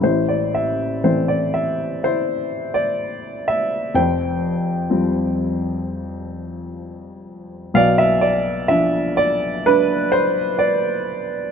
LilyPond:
<<
  \new Staff \with { instrumentName = "Upright piano" } { \time 4/4 \key a \minor \tempo 4 = 63 << { c''16 d''16 e''8 c''16 d''16 e''8 c''8. d''8. e''8 | g''2 r2 | f''16 e''16 d''8 e''8 d''8 b'8 c''8 d''4 | } \\ { e'2 e'2 | c''2 r2 | d''2 d'2 | } >> }
  \new Staff \with { instrumentName = "Upright piano" } { \clef bass \time 4/4 \key a \minor <a,, a,>4 <e a c'>2. | <f,, f,>4 <f g c'>2. | <b,, b,>4 <f d'>2. | }
>>